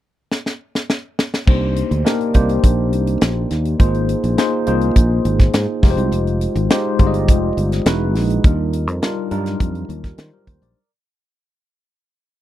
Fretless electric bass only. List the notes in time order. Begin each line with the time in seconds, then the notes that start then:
1.47 C2
1.91 D2
2.34 C2
2.64 A#1
2.93 C2
3.22 A#1
3.51 D#2
3.80 G#1
4.24 A#1
4.68 C2
4.96 A#1
5.25 G#1
5.54 G#2
5.83 F1
5.97 C2
6.12 F1
6.55 G#1
6.99 G1
7.28 F1
7.57 G1
7.86 E1
8.15 A#1
8.44 D#2
8.87 F2
9.31 G2
9.60 F2
9.89 D#2
10.18 D#3
10.47 D#2
10.62 A#1